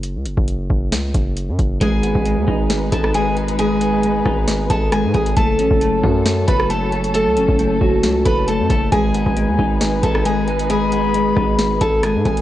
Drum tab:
HH |x-x-x---x-x-x-x-|x-x-x---x-x-x-xx|x-x-x---x-x-x-xx|x-x-x---x-x-x-xx|
SD |--------o-------|--------o--r----|------r-o---r---|--------o--r----|
BD |---o--o---o---o-|o--o--o---o-----|------o---o---o-|o--o--o---o-----|

HH |x-x-x---x-x-x-x-|x-x-x---x-x-x-xx|x-x-x---x-x-x-xx|
SD |--------o-------|--------o--r----|------r-o---r---|
BD |---o--o---o---o-|o--o--o---o-----|------o---o---o-|